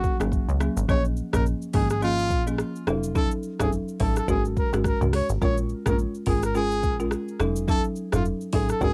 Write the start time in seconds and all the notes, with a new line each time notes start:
Already playing: F#3 A#3 C#4 F#4 G#4
0.04 kick, shaker
0.20 G#1 F#3 A#3 C#4 G#4, cross-stick, shaker
0.32 kick, shaker
0.49 C#2, shaker
0.60 F#3 A#3 C#4 G#4, cross-stick, shaker
0.77 G#1, shaker
0.88 A#1 F3 A#3 C#4 G#4 C#5, kick, shaker
1.05 shaker
1.17 shaker
1.33 A#1 F3 A#3 C#4 G#4 A#4, kick, cross-stick, mid tom, shaker
1.46 shaker
1.62 shaker
1.73 G#1 F3 A#3 C#4 G#4, kick, open hi-hat, shaker
1.90 G#4, cross-stick, shaker
2.02 F3 A#3 C#4 F4 G#4, shaker
2.19 shaker
2.30 A#1, kick, shaker
2.47 F3 A#3 C#4 G#4, shaker
2.58 cross-stick, shaker
2.76 shaker
2.87 F1 F#3 C#4 D#4 A4, cross-stick, shaker
3.03 shaker
3.15 F#3 C#4 D#4 A4, kick, shaker
3.31 shaker
3.43 shaker
3.60 F1 F#3 C#4 D#4 G#4 A4, kick, cross-stick, mid tom, shaker
3.73 shaker
3.88 shaker
4.00 A1 F#3 C#4 D#4 A4, kick, open hi-hat, shaker
4.16 A4, cross-stick, shaker
4.28 G#1 G#3 C#4 F#4 G#4 A#4, kick, shaker
4.45 shaker
4.57 A#4, kick, shaker
4.73 G#1 G#3 C#4 F#4 A#4, cross-stick, shaker
4.84 A#4, kick, cross-stick, shaker
5.01 C#2 G#3 C#4 F#4 A#4, mid tom, shaker
5.13 C#5, cross-stick, open hi-hat, shaker
5.29 G#1, shaker
5.42 A#1 G#3 C#4 F4 A#4 C#5, kick, shaker
5.57 shaker
5.69 shaker
5.86 A#1 G#3 C#4 F4 A#4, kick, cross-stick, mid tom, shaker
5.99 shaker
6.15 shaker
6.26 G#1 G#3 C#4 F4 G#4 A#4, kick, open hi-hat, shaker
6.43 A#4, cross-stick, shaker
6.55 G#3 C#4 F4 G#4 A#4, shaker
6.71 shaker
6.83 A#1, kick, shaker
6.99 G#3 C#4 F4 A#4, shaker
7.11 cross-stick, shaker
7.28 shaker
7.40 F1 F#3 C#4 D#4 A4, cross-stick, shaker
7.56 shaker
7.68 F#3 C#4 D#4 A4, kick, shaker
7.84 shaker
7.96 shaker
8.12 F1 F#3 C#4 D#4 F4 A4, cross-stick, mid tom, shaker
8.25 shaker
8.41 shaker
8.52 A1 F#3 C#4 D#4 G#4 A4, kick, open hi-hat, shaker
8.69 A4, cross-stick, shaker
8.81 G#1 G#3 C#4 F#4 G#4 A#4, kick, shaker